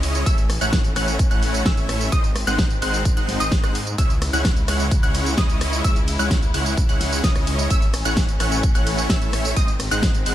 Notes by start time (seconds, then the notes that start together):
Already playing: C#2 C#3 G#3 C#4 E4 C#5 D#5 D#6
0.03 open hi-hat
0.15 closed hi-hat, tambourine
0.26 A1 E3 A3 C#4 E4 C#5 E5 E6, kick, closed hi-hat, tambourine
0.38 closed hi-hat, tambourine
0.50 cross-stick, open hi-hat
0.61 A1 A3 C#4 E4 C#5 F#5 F#6, closed hi-hat, tambourine
0.73 kick, snare, closed hi-hat, tambourine
0.84 closed hi-hat, tambourine
0.96 A1 A3 C#4 E4 C#5 F#5 F#6, cross-stick, open hi-hat
1.08 closed hi-hat, tambourine
1.19 kick, closed hi-hat, tambourine
1.31 A1 A3 C#4 E4 C#5 F#5 F#6, closed hi-hat, tambourine
1.43 open hi-hat
1.54 closed hi-hat, tambourine
1.66 A1 A3 C#4 E4 C#5 E5 E6, kick, snare, closed hi-hat, tambourine
1.77 closed hi-hat, tambourine
1.89 cross-stick, open hi-hat
2.01 closed hi-hat, tambourine
2.12 G#1 D#3 G#3 C4 D#4 C5 D#5 D#6, kick, closed hi-hat, tambourine
2.24 closed hi-hat, tambourine
2.36 cross-stick, open hi-hat
2.47 G#1 G#3 C4 D#4 C5 F#5 F#6, closed hi-hat, tambourine
2.59 kick, snare, closed hi-hat, tambourine
2.71 closed hi-hat, tambourine
2.82 G#1 G#3 C4 D#4 C5 F#5 F#6, open hi-hat
2.94 closed hi-hat, tambourine
3.05 kick, closed hi-hat, tambourine
3.17 G#1 G#3 C4 D#4 C5 F#5 F#6, closed hi-hat, tambourine
3.28 snare, open hi-hat
3.40 G#1 G#3 C4 D#4 C5 D#5 D#6, closed hi-hat, tambourine
3.52 kick, snare, closed hi-hat, tambourine
3.64 G#2 G#3 C4 D#4 C5 F#5 F#6, cross-stick, closed hi-hat, tambourine
3.75 open hi-hat
3.87 closed hi-hat, tambourine
3.98 C#2 C#3 G#3 C#4 E4 C#5 E5 E6, kick, closed hi-hat, tambourine
4.10 closed hi-hat, tambourine
4.22 cross-stick, open hi-hat, ride
4.33 C#2 G#3 C#4 E4 C#5 F#5 F#6, closed hi-hat, tambourine
4.45 kick, snare, closed hi-hat, tambourine
4.57 closed hi-hat, tambourine
4.68 C#2 G#3 C#4 E4 C#5 F#5 F#6, cross-stick, open hi-hat, ride
4.80 closed hi-hat, tambourine
4.91 kick, closed hi-hat, tambourine
5.03 C#2 G#3 C#4 E4 C#5 F#5 F#6, closed hi-hat, tambourine
5.15 open hi-hat, ride
5.26 closed hi-hat, tambourine
5.38 C#2 G#3 C#4 E4 C#5 D#5 D#6, kick, snare, closed hi-hat, tambourine
5.50 closed hi-hat, tambourine
5.61 cross-stick, open hi-hat, ride
5.73 closed hi-hat, tambourine
5.84 C#2 G#3 C#4 E4 C#5 E5 E6, kick, closed hi-hat, tambourine
5.96 closed hi-hat, tambourine
6.08 open hi-hat, ride
6.19 C#2 G#3 C#4 E4 C#5 F#5 F#6, closed hi-hat, tambourine
6.31 kick, snare, closed hi-hat, tambourine
6.43 closed hi-hat, tambourine
6.54 C#2 G#3 C#4 E4 C#5 F#5 F#6, open hi-hat, ride
6.66 closed hi-hat, tambourine
6.77 kick, closed hi-hat, tambourine
6.89 C#2 G#3 C#4 E4 C#5 F#5 F#6, closed hi-hat, tambourine
7.01 snare, open hi-hat, ride
7.12 closed hi-hat, tambourine
7.24 C#2 G#3 C#4 E4 C#5 D#5 D#6, kick, snare, closed hi-hat, tambourine
7.36 cross-stick, closed hi-hat, tambourine
7.47 open hi-hat, ride
7.59 closed hi-hat, tambourine
7.70 A1 E3 A3 C#4 E4 C#5 E5 E6, kick, closed hi-hat, tambourine
7.82 closed hi-hat, tambourine
7.94 cross-stick, open hi-hat, ride
8.05 A1 A3 C#4 E4 C#5 F#5 F#6, closed hi-hat, tambourine
8.17 kick, snare, closed hi-hat, tambourine
8.29 closed hi-hat, tambourine
8.40 A1 A3 C#4 E4 C#5 F#5 F#6, cross-stick, open hi-hat, ride
8.52 closed hi-hat, tambourine
8.63 kick, closed hi-hat, tambourine
8.75 A1 A3 C#4 E4 C#5 F#5 F#6, closed hi-hat, tambourine
8.87 open hi-hat, ride
8.98 closed hi-hat, tambourine
9.10 A1 A3 C#4 E4 C#5 E5 E6, kick, snare, closed hi-hat, tambourine
9.22 closed hi-hat, tambourine
9.33 cross-stick, open hi-hat, ride
9.45 closed hi-hat, tambourine
9.56 G#1 D#3 G#3 C4 D#4 C5 D#5 D#6, kick, closed hi-hat, tambourine
9.68 closed hi-hat, tambourine
9.80 cross-stick, open hi-hat, ride
9.91 G#1 G#3 C4 D#4 C5 F#5 F#6, closed hi-hat, tambourine
10.03 kick, snare, closed hi-hat, tambourine
10.15 closed hi-hat, tambourine
10.26 G#1 G#3 C4 D#4 C5 F#5 F#6, open hi-hat, ride